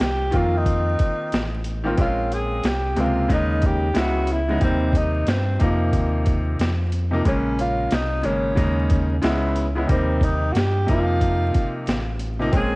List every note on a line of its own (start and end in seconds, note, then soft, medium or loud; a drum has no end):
0.00 0.32 C2 medium
0.00 0.37 G4 loud
0.00 snare loud
0.00 closed hi-hat medium
0.31 0.96 F2 loud
0.31 1.39 D#3 medium
0.31 1.40 A#3 medium
0.31 1.40 C4 medium
0.31 1.40 F4 medium
0.31 kick loud
0.31 closed hi-hat medium
0.36 0.59 F4 medium
0.58 1.55 D#4 medium
0.66 kick loud
0.66 closed hi-hat medium
0.99 kick loud
0.99 closed hi-hat medium
1.32 1.95 A1 medium
1.32 snare loud
1.32 closed hi-hat medium
1.64 closed hi-hat medium
1.84 1.93 D#3 medium
1.84 1.93 A#3 medium
1.84 1.93 C4 medium
1.84 1.94 F4 medium
1.97 2.61 A#1 loud
1.97 2.61 G#3 medium
1.97 2.61 A#3 medium
1.97 2.61 C4 medium
1.97 2.62 C#4 medium
1.97 kick loud
1.97 closed hi-hat medium
2.01 2.35 F4 loud
2.32 2.69 G#4 loud
2.32 closed hi-hat medium
2.63 2.95 C2 medium
2.63 3.02 G4 loud
2.63 snare loud
2.63 closed hi-hat medium
2.96 3.28 C#2 medium
2.96 3.29 C3 medium
2.96 3.27 G#3 medium
2.96 3.28 A#3 medium
2.96 3.31 C4 medium
2.96 closed hi-hat medium
3.00 3.32 F4 loud
3.28 3.92 D#2 loud
3.28 3.85 C#3 medium
3.28 3.85 G#3 medium
3.28 3.86 A#3 medium
3.28 3.86 D#4 medium
3.28 kick loud
3.28 closed hi-hat medium
3.32 3.67 D#4 medium
3.62 4.00 G4 loud
3.62 kick loud
3.62 closed hi-hat medium
3.94 4.58 C#2 loud
3.94 4.36 C#3 medium
3.94 4.36 G#3 medium
3.94 4.37 B3 medium
3.94 4.37 E4 medium
3.94 snare loud
3.94 closed hi-hat medium
3.99 4.33 F#4 medium
4.27 closed hi-hat medium
4.32 4.63 E4 medium
4.48 4.57 C#3 medium
4.48 4.57 G#3 medium
4.48 4.57 B3 medium
4.48 4.58 D#4 medium
4.60 5.24 D#2 loud
4.60 5.24 C3 medium
4.60 5.25 G3 medium
4.60 5.25 A#3 medium
4.60 4.99 C4 medium
4.60 5.25 D#4 medium
4.60 kick loud
4.60 closed hi-hat medium
4.93 kick medium
4.93 closed hi-hat medium
4.97 5.31 D#4 medium
5.27 5.59 G2 medium
5.27 5.62 C4 medium
5.27 snare loud
5.27 closed hi-hat medium
5.59 5.92 F2 loud
5.59 6.67 C3 medium
5.59 6.68 F3 medium
5.59 6.68 A#3 medium
5.59 6.57 A#3 medium
5.59 6.68 D#4 medium
5.59 kick medium
5.59 closed hi-hat medium
5.93 6.56 D#2 loud
5.93 kick medium
5.93 closed hi-hat medium
6.26 kick loud
6.26 closed hi-hat medium
6.59 7.22 F2 medium
6.59 snare loud
6.59 closed hi-hat medium
6.92 closed hi-hat medium
7.11 7.20 C3 medium
7.11 7.20 F3 medium
7.11 7.21 A#3 medium
7.11 7.21 D#4 medium
7.25 7.88 A#1 loud
7.25 7.88 C#3 medium
7.25 7.89 G#3 medium
7.25 7.89 A#3 medium
7.25 7.89 C#4 medium
7.25 7.57 C#4 medium
7.25 kick loud
7.25 closed hi-hat medium
7.59 7.95 F4 loud
7.59 closed hi-hat medium
7.91 8.23 C2 medium
7.91 8.28 D#4 medium
7.91 snare loud
7.91 closed hi-hat medium
8.23 8.56 G#1 medium
8.23 8.54 C#3 medium
8.23 8.55 G#3 medium
8.23 8.55 A#3 medium
8.23 8.58 C#4 medium
8.23 9.24 C#4 medium
8.23 closed hi-hat medium
8.55 9.20 D#2 loud
8.55 9.12 C#3 medium
8.55 9.13 G#3 medium
8.55 9.13 A#3 medium
8.55 9.13 D#4 medium
8.55 kick loud
8.55 closed hi-hat medium
8.90 kick loud
8.90 closed hi-hat medium
9.22 9.86 C#2 loud
9.22 9.64 C#3 medium
9.22 9.64 G#3 medium
9.22 9.64 B3 medium
9.22 9.65 E4 loud
9.22 snare loud
9.22 closed hi-hat medium
9.56 closed hi-hat medium
9.75 9.84 C#3 medium
9.75 9.84 G#3 medium
9.75 9.85 B3 medium
9.75 9.85 E4 medium
9.87 10.52 D#2 loud
9.87 10.51 C3 medium
9.87 10.52 G3 medium
9.87 10.52 A#3 medium
9.87 10.52 D#4 medium
9.87 kick loud
9.87 closed hi-hat medium
9.92 10.25 C4 medium
10.21 10.54 D#4 medium
10.21 kick medium
10.21 closed hi-hat medium
10.52 10.87 G2 medium
10.52 10.59 F#4 medium
10.52 closed hi-hat medium
10.57 10.89 G4 loud
10.57 snare loud
10.86 11.51 F2 loud
10.86 11.94 C3 medium
10.86 11.95 F3 medium
10.86 11.95 A#3 medium
10.86 11.95 D#4 medium
10.86 kick medium
10.86 closed hi-hat medium
10.90 11.84 F4 loud
11.21 kick medium
11.21 closed hi-hat medium
11.54 kick loud
11.54 closed hi-hat medium
11.87 12.50 A1 medium
11.87 snare loud
11.87 closed hi-hat medium
12.19 closed hi-hat medium
12.39 12.48 C3 medium
12.39 12.48 F3 medium
12.39 12.49 A#3 medium
12.39 12.49 D#4 medium
12.52 12.76 A#1 loud
12.52 12.76 G#3 medium
12.52 12.76 A#3 medium
12.52 12.76 C4 medium
12.52 12.76 C#4 medium
12.52 kick loud
12.52 closed hi-hat medium
12.56 12.76 G#4 loud